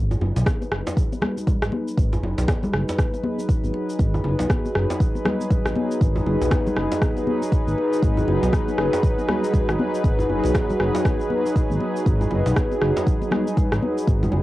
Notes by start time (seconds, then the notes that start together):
Already playing: G#1 F#3 D#4 G#4 B4
0.11 djembe tone, shaker
0.21 F#1, muted conga, djembe tone
0.36 B1, djembe slap, shaker
0.46 kick, cross-stick, high conga, shaker
0.62 muted conga, shaker
0.71 F#1, cross-stick
0.86 muted conga, djembe slap, shaker
0.97 kick, shaker
1.12 muted conga, shaker
1.21 cross-stick, high conga, low conga
1.38 muted conga, shaker
1.47 kick, low conga, shaker
1.62 G#1, cross-stick, shaker
1.72 muted conga, high conga
1.88 shaker
1.97 G#1, kick, muted conga, shaker
2.13 djembe tone, shaker
2.23 F#1, muted conga, djembe tone
2.38 B1, djembe slap, shaker
2.48 kick, cross-stick, djembe slap, high conga, shaker
2.63 muted conga, low conga, shaker
2.73 F#1, cross-stick
2.89 djembe slap, muted conga, shaker
2.98 kick, cross-stick, high conga, shaker
3.13 muted conga, shaker
3.23 high conga
3.38 muted conga, shaker
3.49 kick, shaker
3.64 G#1, high conga, shaker
3.74 muted conga
3.90 shaker
3.99 G#1, kick, muted conga, shaker
4.14 djembe tone, shaker
4.24 F#1, muted conga, djembe tone
4.39 B1, djembe slap, shaker
4.50 kick, cross-stick, high conga, shaker
4.65 muted conga, shaker
4.75 F#1, cross-stick
4.90 djembe slap, muted conga, shaker
5.00 kick, shaker
5.15 muted conga, shaker
5.25 cross-stick, high conga, low conga
5.41 muted conga, shaker
5.50 kick, low conga, shaker
5.66 G#1, cross-stick, shaker
5.75 muted conga, high conga
5.91 shaker
6.01 G#1, kick, muted conga, shaker
6.16 djembe tone, shaker
6.26 F#1, muted conga, djembe tone
6.41 B1, djembe slap, shaker
6.51 kick, cross-stick, djembe slap, high conga, shaker
6.66 muted conga, low conga, shaker
6.76 F#1, cross-stick
6.92 djembe slap, muted conga, shaker
7.02 kick, cross-stick, high conga, shaker
7.17 muted conga, high conga, shaker
7.27 high conga
7.42 muted conga, shaker
7.52 kick, shaker
7.67 G#1, high conga, shaker
7.78 muted conga
7.93 shaker
8.03 G#1, kick, muted conga, shaker
8.17 djembe tone, shaker
8.28 F#1, muted conga, djembe tone
8.43 B1, djembe slap, shaker
8.53 kick, cross-stick, high conga, shaker
8.68 muted conga, shaker
8.78 F#1, cross-stick
8.93 djembe slap, muted conga, shaker
9.03 kick, shaker
9.19 muted conga, shaker
9.29 cross-stick, high conga, low conga
9.44 muted conga, shaker
9.54 kick, low conga, shaker
9.69 G#1, cross-stick, shaker
9.79 muted conga, high conga
9.95 shaker
10.04 G#1, kick, muted conga, shaker
10.19 djembe tone, shaker
10.29 F#1, muted conga, djembe tone
10.44 B1, djembe slap, shaker
10.55 kick, cross-stick, djembe slap, high conga, shaker
10.70 muted conga, low conga, shaker
10.80 F#1, cross-stick
10.95 djembe slap, muted conga, shaker
11.05 kick, cross-stick, high conga, shaker
11.20 muted conga, shaker
11.30 high conga
11.45 muted conga, shaker
11.56 kick, shaker
11.70 G#1, high conga, shaker
11.80 muted conga
11.96 shaker
12.06 G#1, kick, muted conga, shaker
12.21 djembe tone, shaker
12.31 F#1, muted conga, djembe tone
12.46 B1, djembe slap, shaker
12.56 kick, cross-stick, high conga, shaker
12.72 muted conga, shaker
12.82 F#1, cross-stick
12.97 muted conga, djembe slap, shaker
13.07 kick, shaker
13.22 muted conga, shaker
13.31 cross-stick, high conga, low conga
13.47 muted conga, shaker
13.57 kick, low conga, shaker
13.72 G#1, cross-stick, shaker
13.83 muted conga, high conga
13.98 shaker
14.08 G#1, kick, muted conga, shaker
14.23 djembe tone, low conga, shaker
14.32 F#1, muted conga, djembe tone